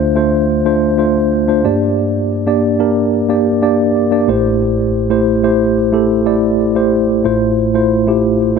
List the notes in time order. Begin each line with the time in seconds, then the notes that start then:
Already playing: D2 D3 A3 D4 F4 C5
0.15 A3 D4 F4 C5
0.65 A3 D4 F4 C5
0.98 A3 D4 F4 C5
1.48 A3 D4 F4 C5
1.64 G2 A#3 D4 G4 D5
2.46 A#3 D4 G4 D5
2.79 A#3 D4 G4 A#4
3.29 A#3 D4 G4 D5
3.62 A#3 D4 G4 D5
4.11 A#3 D4 G4 D5
4.28 A1 A2 A3 E4 G4 C5
5.10 A3 E4 G4 C5
5.43 A3 E4 G4 C5
5.92 A3 E4 G4 A4
6.26 A3 E4 G4 D5
6.75 A3 E4 G4 C5
7.24 A1 A2 A3 E4 F4 C5
7.74 A3 E4 F4 C5
8.07 A3 E4 F4 G4